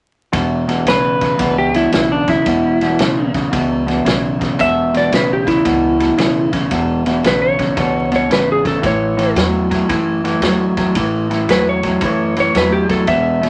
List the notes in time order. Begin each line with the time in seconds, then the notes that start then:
0.33 E1 E2 B2, kick, snare, ride
0.68 E2 B2, snare, ride
0.85 B1 E2 C#3 B4, snare, ride
1.21 E2 C#3, kick, snare, ride
1.38 C#2 E2 B2, kick, snare, ride
1.58 G4
1.74 E2 B2 E4, snare, ride
1.92 B1 E2 C#3 E4, snare, ride
2.12 D4
2.28 E2 C#3 E4, kick, snare, ride
2.46 E1 E2 B2, kick, snare, ride
2.81 E2 B2, snare, ride
2.99 B1 E2 C#3, snare, ride
3.34 E2 C#3, kick, snare, ride
3.52 C#2 E2 B2, kick, snare, ride
3.86 E2 B2, snare, ride
4.05 B1 E2 C#3, snare, ride
4.39 E2 C#3, kick, snare, ride
4.59 E1 E2 B2 E5, kick, snare, ride
4.94 E2 B2 D5, snare, ride
5.11 B1 E2 C#3 B4, snare, ride
5.33 G4
5.46 E2 C#3 E4, kick, snare, ride
5.65 C#2 E2 B2, kick, snare, ride
6.00 E2 B2, snare, ride
6.16 B1 E2 C#3, snare, ride
6.52 E2 C#3, kick, snare, ride
6.71 E1 E2 B2, kick, snare, ride
7.06 E2 B2, snare, ride
7.23 B1 E2 C#3 B4, snare, ride
7.42 C#5
7.59 E2 C#3, kick, snare, ride
7.77 C#2 E2 B2, kick, snare, ride
8.12 E2 B2, snare, ride
8.16 C#5
8.29 G#1 E2 C#3 B4, snare, ride
8.52 G#4
8.64 E2 C#3 A4, kick, snare, ride
8.82 A1 A2 E3, kick, snare, ride
8.87 C#5
9.17 A2 E3, snare, ride
9.35 E2 A2 F#3, snare, ride
9.70 A2 F#3, kick, snare, ride
9.89 F#2 A2 E3, kick, snare, ride
10.24 A2 E3, snare, ride
10.40 E2 A2 F#3, snare, ride
10.77 A2 F#3, kick, snare, ride
10.95 A1 A2 E3, kick, snare, ride
11.30 A2 E3, snare, ride
11.47 E2 A2 F#3 B4, snare, ride
11.69 C#5
11.83 A2 F#3, kick, snare, ride
12.01 F#2 A2 E3, kick, snare, ride
12.36 A2 E3 C#5, snare, ride
12.55 E2 A2 F#3 B4, snare, ride
12.73 G4
12.89 A2 F#3 A4, kick, snare, ride
13.07 E1 E2 B2 E5, kick, snare, ride
13.41 E2 B2, snare, ride